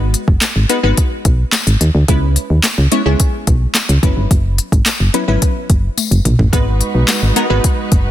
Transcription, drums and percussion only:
0.14 closed hi-hat
0.28 kick
0.41 snare, clap, closed hi-hat, tambourine
0.69 closed hi-hat
0.97 kick, closed hi-hat
1.25 kick, closed hi-hat
1.52 snare, clap, closed hi-hat, tambourine
1.67 closed hi-hat
1.81 closed hi-hat
2.08 kick, closed hi-hat
2.36 closed hi-hat
2.63 snare, clap, closed hi-hat, tambourine
2.92 closed hi-hat
3.20 kick, closed hi-hat
3.47 kick, closed hi-hat
3.75 snare, clap, closed hi-hat, tambourine
3.89 closed hi-hat
4.03 kick, closed hi-hat
4.31 kick, closed hi-hat
4.58 closed hi-hat
4.72 kick, closed hi-hat
4.86 snare, clap, closed hi-hat, tambourine
5.14 closed hi-hat
5.42 kick, closed hi-hat
5.70 kick, closed hi-hat
5.97 closed hi-hat, high tom, tambourine
6.12 closed hi-hat
6.25 closed hi-hat, mid tom
6.39 floor tom
6.53 kick, closed hi-hat
6.81 closed hi-hat
7.08 snare, clap, closed hi-hat, tambourine
7.36 closed hi-hat
7.64 kick, closed hi-hat
7.92 kick, closed hi-hat

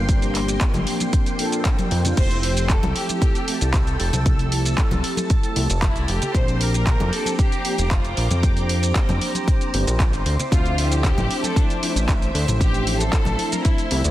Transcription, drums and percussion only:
0.09 kick, closed hi-hat, shaker
0.22 closed hi-hat, shaker
0.35 clap, open hi-hat
0.48 closed hi-hat, shaker
0.61 kick, clap, closed hi-hat, shaker
0.74 closed hi-hat, high conga, low conga, shaker
0.87 open hi-hat
1.00 closed hi-hat, high conga, shaker
1.13 kick, closed hi-hat, shaker
1.26 closed hi-hat, shaker
1.39 open hi-hat
1.52 closed hi-hat, shaker
1.65 kick, clap, closed hi-hat, shaker
1.79 closed hi-hat, high conga, shaker
1.91 open hi-hat
2.05 closed hi-hat, low conga, shaker
2.17 kick, closed hi-hat, crash, shaker
2.31 closed hi-hat, shaker
2.43 open hi-hat
2.57 closed hi-hat, shaker
2.70 kick, clap, closed hi-hat, shaker
2.83 closed hi-hat, high conga, low conga, shaker
2.96 open hi-hat
3.09 closed hi-hat, high conga, shaker
3.22 kick, closed hi-hat, shaker
3.35 closed hi-hat, shaker
3.48 open hi-hat
3.61 closed hi-hat, shaker
3.74 kick, clap, closed hi-hat, shaker
3.87 closed hi-hat, shaker
4.00 open hi-hat
4.13 closed hi-hat, high conga, low conga, shaker
4.26 kick, closed hi-hat, shaker
4.39 closed hi-hat, shaker
4.52 open hi-hat
4.65 closed hi-hat, shaker
4.78 kick, clap, closed hi-hat, shaker
4.91 closed hi-hat, high conga, low conga, shaker
5.04 open hi-hat
5.17 closed hi-hat, high conga, shaker
5.30 kick, closed hi-hat, shaker
5.43 closed hi-hat, shaker
5.56 open hi-hat
5.70 closed hi-hat, shaker
5.82 kick, clap, closed hi-hat, shaker
5.96 closed hi-hat, shaker
6.08 open hi-hat
6.22 closed hi-hat, low conga, shaker
6.35 kick, closed hi-hat, shaker
6.48 closed hi-hat, shaker
6.61 open hi-hat
6.74 closed hi-hat, shaker
6.87 kick, clap, closed hi-hat, shaker
7.00 closed hi-hat, high conga, low conga, shaker
7.13 open hi-hat
7.25 closed hi-hat, high conga, shaker
7.39 kick, closed hi-hat, shaker
7.52 closed hi-hat, shaker
7.65 open hi-hat
7.78 closed hi-hat, shaker
7.91 kick, clap, closed hi-hat, shaker
8.05 closed hi-hat, shaker
8.17 open hi-hat
8.31 closed hi-hat, high conga, low conga, shaker
8.43 kick, closed hi-hat, shaker
8.57 closed hi-hat, shaker
8.69 open hi-hat
8.83 closed hi-hat, shaker
8.95 kick, clap, closed hi-hat, shaker
9.09 closed hi-hat, high conga, low conga, shaker
9.21 open hi-hat
9.35 closed hi-hat, high conga, shaker
9.48 kick, closed hi-hat, shaker
9.61 closed hi-hat, shaker
9.74 open hi-hat
9.87 closed hi-hat, shaker
10.00 kick, clap, closed hi-hat, shaker
10.13 closed hi-hat, shaker
10.26 open hi-hat
10.39 closed hi-hat, low conga, shaker
10.52 kick, closed hi-hat, shaker
10.66 closed hi-hat, shaker
10.78 open hi-hat
10.92 closed hi-hat, shaker
11.04 kick, clap, closed hi-hat, shaker
11.18 closed hi-hat, high conga, low conga, shaker
11.31 open hi-hat
11.43 closed hi-hat, high conga, shaker
11.56 kick, closed hi-hat, shaker
11.70 closed hi-hat, shaker
11.83 open hi-hat
11.96 closed hi-hat, shaker
12.08 kick, clap, closed hi-hat, shaker
12.22 closed hi-hat, shaker
12.35 open hi-hat
12.48 closed hi-hat, high conga, low conga, shaker
12.61 kick, closed hi-hat, shaker
12.74 closed hi-hat, shaker
12.87 open hi-hat
13.00 closed hi-hat, shaker
13.13 kick, clap, closed hi-hat, shaker
13.25 closed hi-hat, high conga, low conga, shaker
13.39 open hi-hat
13.52 closed hi-hat, high conga, shaker
13.65 kick, closed hi-hat, shaker
13.78 closed hi-hat, shaker
13.91 open hi-hat
14.04 closed hi-hat, shaker

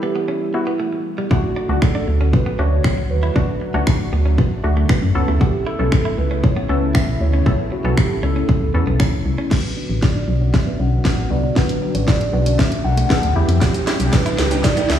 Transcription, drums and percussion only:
1.31 kick
1.82 finger snap, kick
2.33 kick
2.84 finger snap, kick
3.36 kick
3.87 finger snap, kick
4.38 kick
4.89 finger snap, kick
5.41 kick
5.92 finger snap, kick
6.44 kick
6.95 finger snap, kick
7.46 kick
7.98 finger snap, kick
8.49 kick
9.00 finger snap, kick
9.51 kick, snare, crash
10.02 kick, snare
10.54 kick, snare
11.05 kick, snare
11.56 kick, snare
11.69 closed hi-hat
11.95 closed hi-hat
12.08 kick, snare
12.21 closed hi-hat
12.46 closed hi-hat
12.59 kick, snare
12.72 closed hi-hat
12.97 closed hi-hat
13.10 kick, snare
13.23 closed hi-hat
13.49 closed hi-hat
13.61 kick, snare, shaker
13.74 closed hi-hat, shaker
13.87 snare, shaker
14.00 closed hi-hat, shaker
14.13 kick, snare, shaker
14.26 closed hi-hat, shaker
14.38 snare, shaker
14.51 closed hi-hat, shaker
14.64 kick, snare, shaker
14.77 closed hi-hat, shaker
14.90 snare, shaker

